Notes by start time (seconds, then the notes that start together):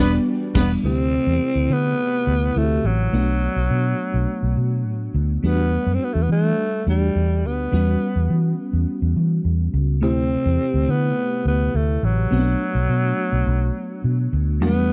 Already playing: E1 E3 G3 B3 D4 F#4 B4 D5
0.00 D4
0.55 E1 G3 B3 D4 B4, kick, snare, crash
0.83 D2 C3 A3 C4 E4 G4
1.27 E2
1.55 D2
1.70 D3 B3
2.27 D2
2.56 D2 A3 C4 E4 F#4
2.64 G4
2.84 A1 F#3
3.12 B1 A3 B3 D4 F#4
3.56 B1
3.71 B2
4.14 B1
4.43 B1
4.57 B2
4.86 A2
5.14 D2
5.43 E2 G3 A3 B3 D4 F#4
5.86 F#2
5.94 C4
6.04 B3
6.13 E2 A3
6.22 B3
6.29 E3 A3
6.87 E2 G3 A3 D4 G4
7.15 E2
7.44 D2 B3
7.72 E2 G3 B3 C#4 F#4
8.16 E2
8.30 E3
8.73 E2
9.02 E2
9.16 E3
9.45 E2
9.74 C#2
10.01 D2 C3 A3 C4 E4 G4
10.46 E2
10.74 D2
10.88 D3 B3
11.45 D2 B3
11.74 D2 A3
12.03 A1 F#3
12.30 B1 A3 B3 C4 F#4
12.39 D4
12.75 B1
12.89 B2
13.32 B1
13.47 B1
14.04 B2
14.33 D2
14.60 E2 F#3 A3 B3 D4 F#4
14.67 G3